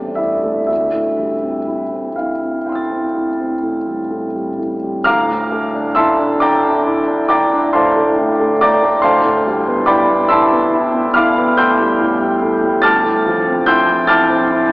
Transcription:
Already playing: A1 E2 G3 A3 D5
0.15 E4 E5
0.43 A3
0.67 D2 E5
0.94 A2
1.19 G3
1.43 C4
1.68 E4
1.92 C4
2.16 E4 F5
2.41 C4
2.66 E4 G5 C6
2.72 E6 A6
2.91 C4
3.16 E4
3.40 C4
3.63 A2
3.87 G3
4.11 A2
4.35 G3
4.59 A2
4.83 G3
5.04 D2 F5 A#5 D6 F6
5.29 A2
5.52 A3
5.75 D4
5.95 E4 E5 A5 C6 E6
6.19 D4
6.40 E4 D5 G5 A#5 D6
6.63 D4
6.86 E4
7.08 D4
7.29 E4 D5 G5 A#5 D6
7.53 D4
7.73 A2 C5 F5 A5 C6
7.96 A3
8.18 A2
8.40 A3
8.61 A2 D5 G5 A#5 D6
8.83 A3
9.02 D2 C5 F5 A5 C6
9.25 A2
9.46 G3
9.68 B3
9.86 E4 D5 G5 B5 D6
10.09 B3
10.29 E4 E5 A5 C6 E6
10.53 B3
10.73 E4
10.95 B3
11.14 E4 F5 B5 D6 F6
11.38 B3
11.57 A2 G5 C6 E6 G6
11.79 G3
12.01 A2
12.20 G3
12.42 A2
12.63 G3
12.82 D2 A5 D6 F6 A6
13.04 A2
13.26 F3
13.46 C4
13.66 E4 G5 C6 E6 G6
13.89 C4
14.07 E4 A5 D6 F6 A6
14.30 C4
14.51 E4

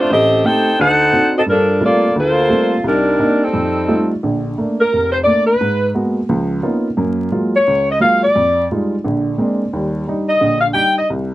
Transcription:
0.00 A3 D4 F4 C5
0.10 A1 C4 G4 A4 D#5
0.44 A3 C4 D#4 G4 A4 C5 G5
0.79 D2 D#4 A4 C5 F#5
1.13 C4 D4 D#4 F#4
1.37 C4 F#4 A4 D#5
1.46 G2 F3 D4 A#4
1.50 A4
1.81 G3 A3 A#3 C4 F4 A4 D5
2.15 D2 A#3 F4 A4 C5
2.49 G3 A3 A#3 C4 F4
2.84 C2 G3 D#4 A#4
2.88 D4
3.19 A#3 C4 D4 D#4
3.45 G3 C4 D#4 A4
3.53 F2
3.88 G3 A3 D#4 F4
4.23 A#1 D3
4.58 A3 A#3 D4
4.81 A#4
4.93 F1
5.12 C5
5.24 A3 A#3 D4 D5
5.46 B4
5.61 G#2
5.95 G#3 A#3 B3 F#4
6.29 C#2 F3
6.63 A#3 B3 C#4 D#4 F4
6.97 F#2 A#3
7.32 F#3 G#3 A#3 F4
7.56 C#5
7.67 C#2
7.91 D#5
8.00 F#3 G#3 A#3 F4 F5
8.23 D5
8.36 F2
8.71 G3 G#3 D#4 F4
9.04 A#1 D3
9.38 G#3 A#3 C4 D4
9.73 D#2 G3
10.08 G3 D4 D#4
10.29 D#5
10.41 A#1 D3
10.61 F5
10.74 G3 D4 D#4 G5
10.98 D#5
11.10 C2

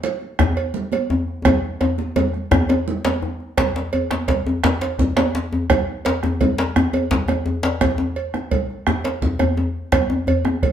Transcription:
0.03 cowbell, low conga
0.21 high conga
0.39 bombo rim, bombo low, djembe slap, high conga, djembe tone, djembe bass
0.57 bombo rim, cowbell
0.74 low conga
0.92 cowbell, djembe slap, high conga
1.10 djembe slap, djembe tone
1.28 djembe slap
1.45 bombo rim, bombo low, cowbell, djembe slap, high conga, djembe tone, low conga, djembe bass
1.63 high conga
1.81 cowbell, djembe tone
1.98 djembe slap, high conga
2.16 cowbell, djembe tone, low conga
2.33 bombo rim, high conga
2.51 bombo rim, bombo low, djembe slap, djembe tone, high conga, djembe bass
2.69 cowbell, djembe tone
2.88 low conga
3.05 cowbell, djembe slap, high conga
3.22 djembe slap, djembe tone
3.40 djembe slap
3.57 bombo rim, bombo low, cowbell, djembe slap, high conga, djembe bass, low conga
3.76 djembe slap
3.93 cowbell, djembe tone
4.11 bombo rim, djembe slap, djembe tone, high conga
4.28 bombo low, cowbell, djembe slap, low conga
4.46 djembe slap, djembe tone
4.63 bombo rim, djembe slap, high conga, djembe bass
4.81 cowbell, djembe slap
4.99 bombo rim, bombo low, djembe tone, low conga
5.17 bombo rim, cowbell, djembe slap, high conga, djembe tone
5.35 djembe slap, high conga
5.52 djembe tone
5.70 bombo rim, bombo low, cowbell, djembe slap, high conga, low conga, djembe bass
6.05 cowbell, djembe slap
6.23 bombo rim, djembe slap, high conga, djembe tone
6.41 bombo low, cowbell, djembe tone, low conga
6.58 djembe slap
6.76 bombo rim, djembe slap, high conga, djembe tone, djembe bass
6.93 cowbell, djembe tone
7.11 bombo rim, bombo low, djembe slap, low conga
7.28 bombo rim, cowbell, djembe slap, djembe tone, high conga
7.46 djembe tone, high conga
7.63 djembe slap
7.81 bombo rim, bombo low, cowbell, djembe slap, djembe tone, high conga, low conga, djembe bass
7.98 djembe tone
8.16 cowbell
8.34 bombo rim, djembe slap, high conga, djembe tone
8.51 bombo low, cowbell, low conga
8.70 djembe slap
8.87 bombo rim, djembe slap, high conga, djembe bass
9.04 cowbell, djembe slap
9.22 bombo rim, bombo low, djembe tone, low conga
9.39 bombo rim, cowbell, djembe slap, djembe tone, high conga, djembe bass
9.57 high conga, djembe tone
9.92 bombo rim, bombo low, cowbell, djembe slap, high conga, low conga, djembe bass
10.10 djembe tone
10.27 bombo rim, cowbell, djembe bass
10.45 bombo rim, djembe slap, djembe tone, high conga
10.63 bombo rim, bombo low, cowbell, high conga, low conga

